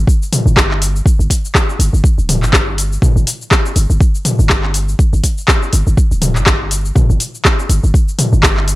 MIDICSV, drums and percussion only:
0, 0, Header, 1, 2, 480
1, 0, Start_track
1, 0, Tempo, 491803
1, 1032, Time_signature, 4, 2, 24, 8
1, 8544, End_track
2, 0, Start_track
2, 0, Title_t, "Drums"
2, 73, Note_on_c, 9, 36, 117
2, 86, Note_on_c, 9, 82, 51
2, 170, Note_off_c, 9, 36, 0
2, 183, Note_off_c, 9, 82, 0
2, 219, Note_on_c, 9, 82, 37
2, 317, Note_off_c, 9, 82, 0
2, 318, Note_on_c, 9, 46, 97
2, 318, Note_on_c, 9, 47, 91
2, 325, Note_on_c, 9, 82, 92
2, 415, Note_off_c, 9, 46, 0
2, 415, Note_off_c, 9, 47, 0
2, 423, Note_off_c, 9, 82, 0
2, 460, Note_on_c, 9, 82, 42
2, 552, Note_on_c, 9, 36, 112
2, 557, Note_off_c, 9, 82, 0
2, 559, Note_on_c, 9, 37, 116
2, 559, Note_on_c, 9, 39, 101
2, 566, Note_on_c, 9, 82, 55
2, 649, Note_off_c, 9, 36, 0
2, 656, Note_off_c, 9, 37, 0
2, 656, Note_off_c, 9, 39, 0
2, 664, Note_off_c, 9, 82, 0
2, 691, Note_on_c, 9, 39, 31
2, 788, Note_off_c, 9, 39, 0
2, 798, Note_on_c, 9, 46, 88
2, 805, Note_on_c, 9, 82, 101
2, 895, Note_off_c, 9, 46, 0
2, 903, Note_off_c, 9, 82, 0
2, 936, Note_on_c, 9, 82, 43
2, 1031, Note_on_c, 9, 36, 127
2, 1034, Note_off_c, 9, 82, 0
2, 1043, Note_on_c, 9, 82, 53
2, 1129, Note_off_c, 9, 36, 0
2, 1141, Note_off_c, 9, 82, 0
2, 1175, Note_on_c, 9, 82, 38
2, 1270, Note_on_c, 9, 36, 64
2, 1273, Note_off_c, 9, 82, 0
2, 1274, Note_on_c, 9, 46, 96
2, 1282, Note_on_c, 9, 82, 97
2, 1368, Note_off_c, 9, 36, 0
2, 1372, Note_off_c, 9, 46, 0
2, 1379, Note_off_c, 9, 82, 0
2, 1416, Note_on_c, 9, 82, 43
2, 1510, Note_on_c, 9, 36, 122
2, 1513, Note_on_c, 9, 37, 114
2, 1513, Note_on_c, 9, 39, 95
2, 1514, Note_off_c, 9, 82, 0
2, 1521, Note_on_c, 9, 82, 55
2, 1608, Note_off_c, 9, 36, 0
2, 1611, Note_off_c, 9, 37, 0
2, 1611, Note_off_c, 9, 39, 0
2, 1618, Note_off_c, 9, 82, 0
2, 1654, Note_on_c, 9, 82, 39
2, 1752, Note_off_c, 9, 82, 0
2, 1754, Note_on_c, 9, 46, 81
2, 1762, Note_on_c, 9, 82, 94
2, 1852, Note_off_c, 9, 46, 0
2, 1859, Note_off_c, 9, 82, 0
2, 1895, Note_on_c, 9, 82, 40
2, 1989, Note_on_c, 9, 36, 118
2, 1993, Note_off_c, 9, 82, 0
2, 2001, Note_on_c, 9, 82, 54
2, 2087, Note_off_c, 9, 36, 0
2, 2098, Note_off_c, 9, 82, 0
2, 2133, Note_on_c, 9, 82, 37
2, 2231, Note_off_c, 9, 82, 0
2, 2235, Note_on_c, 9, 46, 93
2, 2235, Note_on_c, 9, 47, 87
2, 2242, Note_on_c, 9, 82, 96
2, 2333, Note_off_c, 9, 46, 0
2, 2333, Note_off_c, 9, 47, 0
2, 2340, Note_off_c, 9, 82, 0
2, 2369, Note_on_c, 9, 39, 31
2, 2376, Note_on_c, 9, 82, 43
2, 2466, Note_off_c, 9, 39, 0
2, 2469, Note_on_c, 9, 36, 123
2, 2474, Note_off_c, 9, 82, 0
2, 2474, Note_on_c, 9, 37, 113
2, 2474, Note_on_c, 9, 39, 105
2, 2481, Note_on_c, 9, 82, 57
2, 2567, Note_off_c, 9, 36, 0
2, 2572, Note_off_c, 9, 37, 0
2, 2572, Note_off_c, 9, 39, 0
2, 2579, Note_off_c, 9, 82, 0
2, 2714, Note_on_c, 9, 46, 81
2, 2722, Note_on_c, 9, 82, 102
2, 2812, Note_off_c, 9, 46, 0
2, 2819, Note_off_c, 9, 82, 0
2, 2854, Note_on_c, 9, 82, 43
2, 2948, Note_on_c, 9, 36, 126
2, 2951, Note_off_c, 9, 82, 0
2, 2953, Note_on_c, 9, 47, 83
2, 2960, Note_on_c, 9, 82, 54
2, 3046, Note_off_c, 9, 36, 0
2, 3051, Note_off_c, 9, 47, 0
2, 3058, Note_off_c, 9, 82, 0
2, 3093, Note_on_c, 9, 82, 41
2, 3190, Note_off_c, 9, 82, 0
2, 3192, Note_on_c, 9, 46, 90
2, 3199, Note_on_c, 9, 82, 99
2, 3289, Note_off_c, 9, 46, 0
2, 3297, Note_off_c, 9, 82, 0
2, 3334, Note_on_c, 9, 82, 42
2, 3429, Note_on_c, 9, 36, 126
2, 3431, Note_off_c, 9, 82, 0
2, 3431, Note_on_c, 9, 37, 114
2, 3431, Note_on_c, 9, 39, 96
2, 3439, Note_on_c, 9, 82, 56
2, 3526, Note_off_c, 9, 36, 0
2, 3529, Note_off_c, 9, 37, 0
2, 3529, Note_off_c, 9, 39, 0
2, 3536, Note_off_c, 9, 82, 0
2, 3570, Note_on_c, 9, 82, 38
2, 3667, Note_off_c, 9, 82, 0
2, 3668, Note_on_c, 9, 46, 80
2, 3676, Note_on_c, 9, 82, 97
2, 3766, Note_off_c, 9, 46, 0
2, 3773, Note_off_c, 9, 82, 0
2, 3808, Note_on_c, 9, 82, 43
2, 3906, Note_off_c, 9, 82, 0
2, 3909, Note_on_c, 9, 36, 125
2, 3916, Note_on_c, 9, 82, 55
2, 4007, Note_off_c, 9, 36, 0
2, 4014, Note_off_c, 9, 82, 0
2, 4049, Note_on_c, 9, 82, 40
2, 4147, Note_off_c, 9, 82, 0
2, 4148, Note_on_c, 9, 46, 88
2, 4148, Note_on_c, 9, 47, 92
2, 4156, Note_on_c, 9, 82, 98
2, 4246, Note_off_c, 9, 46, 0
2, 4246, Note_off_c, 9, 47, 0
2, 4253, Note_off_c, 9, 82, 0
2, 4288, Note_on_c, 9, 82, 44
2, 4385, Note_off_c, 9, 82, 0
2, 4388, Note_on_c, 9, 37, 113
2, 4388, Note_on_c, 9, 39, 99
2, 4390, Note_on_c, 9, 36, 118
2, 4396, Note_on_c, 9, 82, 55
2, 4486, Note_off_c, 9, 37, 0
2, 4486, Note_off_c, 9, 39, 0
2, 4488, Note_off_c, 9, 36, 0
2, 4493, Note_off_c, 9, 82, 0
2, 4522, Note_on_c, 9, 39, 27
2, 4619, Note_off_c, 9, 39, 0
2, 4627, Note_on_c, 9, 46, 81
2, 4635, Note_on_c, 9, 82, 101
2, 4725, Note_off_c, 9, 46, 0
2, 4732, Note_off_c, 9, 82, 0
2, 4768, Note_on_c, 9, 82, 44
2, 4865, Note_off_c, 9, 82, 0
2, 4870, Note_on_c, 9, 36, 125
2, 4876, Note_on_c, 9, 82, 53
2, 4968, Note_off_c, 9, 36, 0
2, 4974, Note_off_c, 9, 82, 0
2, 5011, Note_on_c, 9, 82, 37
2, 5109, Note_off_c, 9, 82, 0
2, 5110, Note_on_c, 9, 36, 66
2, 5110, Note_on_c, 9, 46, 85
2, 5117, Note_on_c, 9, 82, 100
2, 5207, Note_off_c, 9, 46, 0
2, 5208, Note_off_c, 9, 36, 0
2, 5215, Note_off_c, 9, 82, 0
2, 5250, Note_on_c, 9, 82, 40
2, 5347, Note_off_c, 9, 82, 0
2, 5350, Note_on_c, 9, 37, 103
2, 5350, Note_on_c, 9, 39, 97
2, 5351, Note_on_c, 9, 36, 125
2, 5357, Note_on_c, 9, 82, 56
2, 5448, Note_off_c, 9, 36, 0
2, 5448, Note_off_c, 9, 37, 0
2, 5448, Note_off_c, 9, 39, 0
2, 5455, Note_off_c, 9, 82, 0
2, 5491, Note_on_c, 9, 82, 36
2, 5589, Note_off_c, 9, 82, 0
2, 5589, Note_on_c, 9, 46, 76
2, 5596, Note_on_c, 9, 82, 93
2, 5686, Note_off_c, 9, 46, 0
2, 5694, Note_off_c, 9, 82, 0
2, 5730, Note_on_c, 9, 82, 41
2, 5828, Note_off_c, 9, 82, 0
2, 5831, Note_on_c, 9, 36, 117
2, 5836, Note_on_c, 9, 82, 52
2, 5928, Note_off_c, 9, 36, 0
2, 5933, Note_off_c, 9, 82, 0
2, 5968, Note_on_c, 9, 82, 37
2, 6066, Note_off_c, 9, 82, 0
2, 6068, Note_on_c, 9, 46, 90
2, 6068, Note_on_c, 9, 47, 92
2, 6075, Note_on_c, 9, 82, 97
2, 6165, Note_off_c, 9, 46, 0
2, 6165, Note_off_c, 9, 47, 0
2, 6173, Note_off_c, 9, 82, 0
2, 6203, Note_on_c, 9, 39, 32
2, 6211, Note_on_c, 9, 82, 42
2, 6301, Note_off_c, 9, 39, 0
2, 6308, Note_off_c, 9, 82, 0
2, 6309, Note_on_c, 9, 37, 103
2, 6309, Note_on_c, 9, 39, 102
2, 6310, Note_on_c, 9, 36, 118
2, 6316, Note_on_c, 9, 82, 56
2, 6407, Note_off_c, 9, 37, 0
2, 6407, Note_off_c, 9, 39, 0
2, 6408, Note_off_c, 9, 36, 0
2, 6414, Note_off_c, 9, 82, 0
2, 6549, Note_on_c, 9, 46, 82
2, 6557, Note_on_c, 9, 82, 104
2, 6647, Note_off_c, 9, 46, 0
2, 6654, Note_off_c, 9, 82, 0
2, 6690, Note_on_c, 9, 82, 43
2, 6787, Note_off_c, 9, 82, 0
2, 6788, Note_on_c, 9, 47, 84
2, 6790, Note_on_c, 9, 36, 127
2, 6795, Note_on_c, 9, 82, 51
2, 6885, Note_off_c, 9, 47, 0
2, 6888, Note_off_c, 9, 36, 0
2, 6893, Note_off_c, 9, 82, 0
2, 6931, Note_on_c, 9, 82, 38
2, 7028, Note_off_c, 9, 82, 0
2, 7029, Note_on_c, 9, 46, 85
2, 7036, Note_on_c, 9, 82, 95
2, 7126, Note_off_c, 9, 46, 0
2, 7134, Note_off_c, 9, 82, 0
2, 7171, Note_on_c, 9, 82, 39
2, 7268, Note_off_c, 9, 82, 0
2, 7270, Note_on_c, 9, 36, 122
2, 7271, Note_on_c, 9, 37, 102
2, 7271, Note_on_c, 9, 39, 104
2, 7278, Note_on_c, 9, 82, 53
2, 7368, Note_off_c, 9, 36, 0
2, 7368, Note_off_c, 9, 37, 0
2, 7368, Note_off_c, 9, 39, 0
2, 7376, Note_off_c, 9, 82, 0
2, 7412, Note_on_c, 9, 82, 36
2, 7510, Note_off_c, 9, 82, 0
2, 7510, Note_on_c, 9, 46, 74
2, 7518, Note_on_c, 9, 82, 96
2, 7608, Note_off_c, 9, 46, 0
2, 7615, Note_off_c, 9, 82, 0
2, 7650, Note_on_c, 9, 82, 40
2, 7747, Note_off_c, 9, 82, 0
2, 7750, Note_on_c, 9, 36, 123
2, 7757, Note_on_c, 9, 82, 51
2, 7847, Note_off_c, 9, 36, 0
2, 7855, Note_off_c, 9, 82, 0
2, 7891, Note_on_c, 9, 82, 37
2, 7988, Note_off_c, 9, 82, 0
2, 7990, Note_on_c, 9, 46, 87
2, 7990, Note_on_c, 9, 47, 98
2, 7997, Note_on_c, 9, 82, 90
2, 8087, Note_off_c, 9, 46, 0
2, 8087, Note_off_c, 9, 47, 0
2, 8095, Note_off_c, 9, 82, 0
2, 8130, Note_on_c, 9, 82, 40
2, 8227, Note_off_c, 9, 82, 0
2, 8230, Note_on_c, 9, 36, 112
2, 8230, Note_on_c, 9, 37, 108
2, 8230, Note_on_c, 9, 39, 107
2, 8237, Note_on_c, 9, 82, 55
2, 8327, Note_off_c, 9, 36, 0
2, 8327, Note_off_c, 9, 37, 0
2, 8327, Note_off_c, 9, 39, 0
2, 8335, Note_off_c, 9, 82, 0
2, 8363, Note_on_c, 9, 39, 31
2, 8461, Note_off_c, 9, 39, 0
2, 8468, Note_on_c, 9, 46, 78
2, 8476, Note_on_c, 9, 82, 95
2, 8544, Note_off_c, 9, 46, 0
2, 8544, Note_off_c, 9, 82, 0
2, 8544, End_track
0, 0, End_of_file